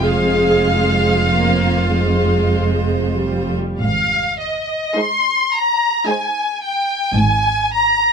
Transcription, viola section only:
0, 0, Header, 1, 2, 480
1, 0, Start_track
1, 0, Key_signature, -4, "minor"
1, 0, Tempo, 1263158
1, 7, Time_signature, 3, 2, 24, 8
1, 1446, Key_signature, -4, "major"
1, 1447, Tempo, 1129944
1, 2407, Tempo, 1086957
1, 3316, End_track
2, 0, Start_track
2, 0, Title_t, "Viola section"
2, 0, Program_c, 0, 48
2, 12, Note_on_c, 0, 56, 28
2, 12, Note_on_c, 0, 68, 30
2, 439, Note_off_c, 0, 56, 0
2, 448, Note_off_c, 0, 68, 0
2, 495, Note_on_c, 0, 58, 41
2, 717, Note_off_c, 0, 58, 0
2, 736, Note_on_c, 0, 56, 32
2, 1210, Note_on_c, 0, 55, 27
2, 1214, Note_off_c, 0, 56, 0
2, 1445, Note_off_c, 0, 55, 0
2, 1937, Note_on_c, 0, 63, 36
2, 1938, Note_on_c, 0, 56, 38
2, 2297, Note_off_c, 0, 63, 0
2, 2298, Note_off_c, 0, 56, 0
2, 2410, Note_on_c, 0, 56, 35
2, 2411, Note_on_c, 0, 63, 35
2, 2771, Note_off_c, 0, 56, 0
2, 2771, Note_off_c, 0, 63, 0
2, 3316, End_track
0, 0, End_of_file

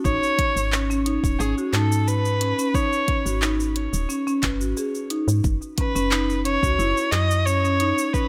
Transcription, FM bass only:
0, 0, Header, 1, 2, 480
1, 0, Start_track
1, 0, Tempo, 674157
1, 34, Time_signature, 4, 2, 24, 8
1, 5897, End_track
2, 0, Start_track
2, 0, Title_t, "FM bass"
2, 0, Program_c, 0, 39
2, 35, Note_on_c, 0, 32, 104
2, 140, Note_off_c, 0, 32, 0
2, 398, Note_on_c, 0, 32, 83
2, 846, Note_off_c, 0, 32, 0
2, 879, Note_on_c, 0, 27, 78
2, 975, Note_off_c, 0, 27, 0
2, 993, Note_on_c, 0, 32, 100
2, 1099, Note_off_c, 0, 32, 0
2, 1233, Note_on_c, 0, 44, 92
2, 1806, Note_off_c, 0, 44, 0
2, 2318, Note_on_c, 0, 32, 80
2, 2766, Note_off_c, 0, 32, 0
2, 2799, Note_on_c, 0, 27, 78
2, 2895, Note_off_c, 0, 27, 0
2, 3154, Note_on_c, 0, 30, 89
2, 3278, Note_on_c, 0, 32, 94
2, 3289, Note_off_c, 0, 30, 0
2, 3374, Note_off_c, 0, 32, 0
2, 3757, Note_on_c, 0, 44, 87
2, 3854, Note_off_c, 0, 44, 0
2, 3874, Note_on_c, 0, 30, 100
2, 3979, Note_off_c, 0, 30, 0
2, 4238, Note_on_c, 0, 30, 83
2, 4686, Note_off_c, 0, 30, 0
2, 4720, Note_on_c, 0, 37, 80
2, 4815, Note_off_c, 0, 37, 0
2, 4831, Note_on_c, 0, 30, 105
2, 4938, Note_off_c, 0, 30, 0
2, 5072, Note_on_c, 0, 42, 97
2, 5646, Note_off_c, 0, 42, 0
2, 5897, End_track
0, 0, End_of_file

